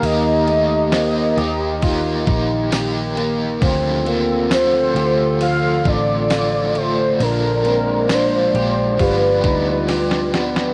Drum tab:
RD |x-x-x-x-x-x-x-x-|x-x-x-x-x-x-x-x-|x-x-x-x-x-x-x-x-|
TB |----x-------x---|----x-------x---|----x-----------|
SD |----o-------o---|----o-------o---|----o-------oooo|
BD |--------o-o-----|o---------o-----|--------o-o-----|